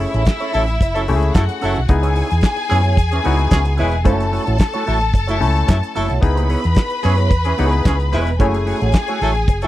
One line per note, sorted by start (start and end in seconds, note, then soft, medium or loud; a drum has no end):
0.00 0.70 A3 medium
0.00 0.13 C#4 medium
0.00 0.70 C#4 medium
0.00 0.13 E4 medium
0.00 0.70 E4 medium
0.00 1.32 E4 medium
0.00 0.70 G#4 medium
0.00 0.13 A4 medium
0.00 0.12 C#5 medium
0.00 1.32 E5 loud
0.13 0.24 A1 loud
0.13 0.25 C#4 soft
0.13 0.25 E4 soft
0.13 0.25 A4 medium
0.13 0.26 C#5 medium
0.13 closed hi-hat medium
0.25 kick loud
0.25 snare loud
0.25 clap medium
0.25 closed hi-hat soft
0.40 0.52 C#4 medium
0.40 0.53 E4 medium
0.40 0.54 A4 medium
0.40 0.54 C#5 medium
0.40 closed hi-hat soft
0.54 0.81 A1 medium
0.54 0.63 F#3 medium
0.54 0.67 C#4 medium
0.54 0.63 E4 medium
0.54 0.68 E4 medium
0.54 0.63 A4 medium
0.54 0.67 A4 medium
0.54 0.67 C#5 medium
0.54 open hi-hat medium
0.68 muted clean electric guitar stroke soft
0.68 closed hi-hat soft
0.81 1.11 F#1 medium
0.81 muted clean electric guitar stroke soft
0.81 kick loud
0.81 closed hi-hat medium
0.95 1.03 F#3 medium
0.95 1.07 C#4 medium
0.95 1.03 E4 medium
0.95 1.07 E4 medium
0.95 1.03 A4 medium
0.95 1.08 A4 medium
0.95 1.08 C#5 medium
0.95 closed hi-hat soft
1.08 1.29 C#2 medium
1.08 1.81 A3 medium
1.08 1.81 C#4 medium
1.08 1.81 E4 medium
1.08 1.15 G4 medium
1.08 open hi-hat medium
1.16 1.85 G#4 medium
1.22 muted clean electric guitar stroke soft
1.22 closed hi-hat soft
1.34 1.46 F#2 loud
1.34 1.44 F#3 medium
1.34 1.44 E4 medium
1.34 1.88 F#4 medium
1.34 1.44 A4 medium
1.34 1.87 F#5 medium
1.34 muted clean electric guitar stroke soft
1.34 kick loud
1.34 snare loud
1.34 clap loud
1.34 closed hi-hat medium
1.49 muted clean electric guitar stroke medium
1.49 closed hi-hat soft
1.61 1.74 F#1 medium
1.61 1.79 F#3 medium
1.61 1.79 C#4 medium
1.61 1.76 E4 medium
1.61 1.79 E4 medium
1.61 1.79 A4 loud
1.61 1.75 A4 medium
1.61 1.75 C#5 medium
1.61 open hi-hat medium
1.76 1.87 B1 medium
1.76 muted clean electric guitar stroke soft
1.76 closed hi-hat soft
1.88 2.21 C#2 loud
1.88 2.86 B3 medium
1.88 2.86 D#4 medium
1.88 2.86 E4 medium
1.88 4.02 G#4 medium
1.88 2.87 G#4 medium
1.88 4.02 G#5 loud
1.88 muted clean electric guitar stroke soft
1.88 kick loud
1.88 closed hi-hat medium
2.03 2.14 B3 medium
2.03 2.15 E4 medium
2.03 2.15 G#4 medium
2.03 2.16 C#5 medium
2.03 closed hi-hat medium
2.15 2.30 B3 medium
2.15 2.30 E4 medium
2.15 2.29 G#4 medium
2.15 2.29 C#5 medium
2.15 open hi-hat medium
2.30 2.41 E2 medium
2.30 muted clean electric guitar stroke medium
2.30 closed hi-hat soft
2.41 muted clean electric guitar stroke soft
2.41 kick loud
2.41 snare loud
2.41 clap medium
2.41 closed hi-hat medium
2.56 muted clean electric guitar stroke medium
2.56 closed hi-hat soft
2.69 2.98 F#2 medium
2.69 2.79 E3 medium
2.69 2.84 B3 medium
2.69 2.79 C#4 medium
2.69 2.83 E4 medium
2.69 2.79 G#4 medium
2.69 2.83 G#4 medium
2.69 2.82 C#5 medium
2.69 clap medium
2.69 open hi-hat medium
2.84 2.97 B3 soft
2.84 2.97 E4 soft
2.84 2.97 G#4 medium
2.84 2.96 C#5 medium
2.84 closed hi-hat soft
2.97 3.18 E2 loud
2.97 kick loud
2.97 closed hi-hat medium
3.11 3.19 E3 medium
3.11 3.19 C#4 medium
3.11 3.19 G#4 medium
3.11 muted clean electric guitar stroke soft
3.11 closed hi-hat soft
3.24 3.46 C#2 medium
3.24 3.41 B3 medium
3.24 3.97 B3 medium
3.24 3.98 D#4 medium
3.24 3.38 E4 loud
3.24 3.98 E4 medium
3.24 3.98 F#4 loud
3.24 3.37 G#4 loud
3.24 3.36 C#5 medium
3.24 open hi-hat medium
3.38 muted clean electric guitar stroke soft
3.38 closed hi-hat soft
3.51 3.81 C#2 medium
3.51 3.60 E3 medium
3.51 3.60 C#4 medium
3.51 3.60 G#4 medium
3.51 muted clean electric guitar stroke soft
3.51 kick loud
3.51 snare loud
3.51 clap medium
3.51 closed hi-hat medium
3.65 muted clean electric guitar stroke medium
3.65 closed hi-hat soft
3.77 4.06 E1 medium
3.77 3.96 G#3 medium
3.77 3.95 B3 medium
3.77 3.92 E4 medium
3.77 3.96 E4 medium
3.77 3.92 G#4 medium
3.77 3.96 B4 medium
3.77 3.91 C#5 loud
3.77 open hi-hat medium
3.92 muted clean electric guitar stroke soft
3.92 closed hi-hat soft
4.04 4.37 F#1 loud
4.04 4.25 A3 medium
4.04 5.02 A3 medium
4.04 5.02 C#4 medium
4.04 4.25 E4 medium
4.04 5.03 E4 medium
4.04 4.26 F#4 medium
4.04 6.18 A4 medium
4.04 5.03 A4 medium
4.04 4.26 C#5 loud
4.04 6.18 A5 loud
4.04 kick loud
4.04 closed hi-hat medium
4.20 closed hi-hat medium
4.32 4.46 A3 medium
4.32 4.46 E4 medium
4.32 4.46 F#4 medium
4.32 4.45 C#5 medium
4.32 open hi-hat medium
4.46 4.57 A1 medium
4.46 4.58 A3 soft
4.46 4.58 E4 medium
4.46 4.59 F#4 medium
4.46 4.59 C#5 medium
4.46 closed hi-hat soft
4.58 kick loud
4.58 snare loud
4.58 clap medium
4.58 closed hi-hat medium
4.73 4.85 A3 medium
4.73 4.86 E4 medium
4.73 4.86 F#4 medium
4.73 4.86 C#5 loud
4.73 closed hi-hat soft
4.86 5.14 A1 medium
4.86 4.96 F#3 medium
4.86 5.00 A3 medium
4.86 5.01 E4 medium
4.86 4.96 E4 medium
4.86 5.00 F#4 medium
4.86 4.96 A4 medium
4.86 5.00 C#5 medium
4.86 open hi-hat medium
5.01 muted clean electric guitar stroke soft
5.01 closed hi-hat soft
5.14 5.43 F#1 medium
5.14 muted clean electric guitar stroke soft
5.14 kick loud
5.14 closed hi-hat medium
5.27 5.36 F#3 medium
5.27 5.40 A3 medium
5.27 5.36 E4 medium
5.27 5.40 E4 medium
5.27 5.40 F#4 medium
5.27 5.36 A4 medium
5.27 5.41 C#5 medium
5.27 closed hi-hat soft
5.40 5.62 C#2 medium
5.40 6.13 A3 medium
5.40 6.14 C#4 medium
5.40 6.14 E4 medium
5.40 6.14 A4 medium
5.40 muted clean electric guitar stroke soft
5.40 open hi-hat medium
5.55 muted clean electric guitar stroke soft
5.55 closed hi-hat soft
5.67 5.80 F#2 loud
5.67 5.77 F#3 medium
5.67 5.77 E4 medium
5.67 5.77 A4 medium
5.67 muted clean electric guitar stroke medium
5.67 kick loud
5.67 snare loud
5.67 clap loud
5.67 closed hi-hat medium
5.82 muted clean electric guitar stroke soft
5.82 closed hi-hat medium
5.95 6.07 F#1 medium
5.95 6.12 F#3 medium
5.95 6.10 A3 medium
5.95 6.12 E4 medium
5.95 6.10 E4 medium
5.95 6.09 F#4 medium
5.95 6.12 A4 loud
5.95 6.08 C#5 medium
5.95 open hi-hat medium
6.09 6.20 B1 medium
6.09 6.22 A3 soft
6.09 6.22 E4 soft
6.09 6.22 F#4 soft
6.09 6.22 C#5 medium
6.09 closed hi-hat soft
6.21 6.54 C#2 loud
6.21 7.19 B3 medium
6.21 7.20 D#4 medium
6.21 7.20 E4 medium
6.21 7.20 G#4 medium
6.21 8.36 B4 medium
6.21 8.36 B5 medium
6.21 muted clean electric guitar stroke medium
6.21 kick loud
6.21 closed hi-hat medium
6.35 6.48 B3 medium
6.35 6.48 E4 medium
6.35 6.49 G#4 medium
6.35 6.49 C#5 medium
6.35 closed hi-hat medium
6.49 6.63 B3 medium
6.49 6.63 E4 medium
6.49 6.62 G#4 medium
6.49 6.62 C#5 medium
6.49 open hi-hat medium
6.63 6.74 E2 medium
6.63 muted clean electric guitar stroke soft
6.63 closed hi-hat medium
6.75 muted clean electric guitar stroke soft
6.75 kick loud
6.75 snare loud
6.75 clap medium
6.75 closed hi-hat medium
6.90 muted clean electric guitar stroke soft
6.90 closed hi-hat soft
7.03 7.31 F#2 medium
7.03 7.13 E3 medium
7.03 7.18 B3 medium
7.03 7.13 C#4 medium
7.03 7.18 E4 medium
7.03 7.13 G#4 medium
7.03 7.17 G#4 medium
7.03 7.17 C#5 medium
7.03 clap medium
7.03 open hi-hat medium
7.17 7.31 B3 medium
7.17 7.31 E4 medium
7.17 7.31 G#4 medium
7.17 7.30 C#5 medium
7.17 closed hi-hat soft
7.31 7.52 E2 medium
7.31 kick loud
7.31 closed hi-hat medium
7.45 7.53 E3 medium
7.45 7.53 C#4 medium
7.45 7.53 G#4 medium
7.45 muted clean electric guitar stroke soft
7.45 closed hi-hat soft
7.57 7.79 C#2 medium
7.57 7.75 B3 medium
7.57 8.31 B3 medium
7.57 8.31 D#4 medium
7.57 7.73 E4 medium
7.57 8.32 E4 medium
7.57 7.66 G4 medium
7.57 7.72 G#4 loud
7.57 7.71 C#5 loud
7.57 open hi-hat medium
7.67 8.35 G#4 medium
7.72 muted clean electric guitar stroke soft
7.72 closed hi-hat soft
7.84 8.15 C#2 loud
7.84 7.95 E3 medium
7.84 7.95 C#4 medium
7.84 7.95 G#4 medium
7.84 muted clean electric guitar stroke soft
7.84 kick loud
7.84 snare loud
7.84 clap loud
7.84 closed hi-hat medium
7.99 muted clean electric guitar stroke soft
7.99 closed hi-hat soft
8.12 8.40 E1 medium
8.12 8.30 G#3 medium
8.12 8.32 B3 medium
8.12 8.26 E4 medium
8.12 8.30 E4 medium
8.12 8.26 G#4 medium
8.12 8.30 B4 loud
8.12 8.25 C#5 medium
8.12 open hi-hat medium
8.27 muted clean electric guitar stroke soft
8.27 closed hi-hat soft
8.39 8.72 F#1 loud
8.39 8.57 A3 medium
8.39 9.37 A3 medium
8.39 9.37 C#4 medium
8.39 8.57 E4 medium
8.39 9.37 E4 medium
8.39 8.57 F#4 loud
8.39 9.68 G#4 medium
8.39 9.38 G#4 medium
8.39 8.57 C#5 loud
8.39 9.68 G#5 loud
8.39 kick loud
8.39 closed hi-hat medium
8.55 closed hi-hat medium
8.66 8.80 A3 medium
8.66 8.80 E4 medium
8.66 8.81 F#4 medium
8.66 8.80 C#5 medium
8.66 open hi-hat medium
8.81 8.91 A1 loud
8.81 8.93 A3 soft
8.81 8.93 E4 soft
8.81 8.94 F#4 medium
8.81 8.93 C#5 medium
8.81 closed hi-hat soft
8.92 muted clean electric guitar stroke soft
8.92 kick loud
8.92 snare loud
8.92 clap medium
8.92 closed hi-hat medium
9.08 9.20 A3 medium
9.08 9.21 E4 medium
9.08 9.21 F#4 medium
9.08 9.22 C#5 medium
9.08 closed hi-hat soft
9.21 9.48 A1 loud
9.21 9.31 F#3 medium
9.21 9.35 A3 medium
9.21 9.31 E4 medium
9.21 9.35 E4 medium
9.21 9.35 F#4 medium
9.21 9.31 A4 medium
9.21 9.34 C#5 medium
9.21 open hi-hat medium
9.35 muted clean electric guitar stroke soft
9.35 closed hi-hat soft
9.48 9.68 F#1 medium
9.48 muted clean electric guitar stroke soft
9.48 kick loud
9.48 closed hi-hat medium
9.62 9.68 F#3 medium
9.62 9.68 A3 medium
9.62 9.68 E4 medium
9.62 9.68 F#4 medium
9.62 9.68 A4 medium
9.62 9.68 C#5 medium
9.62 closed hi-hat soft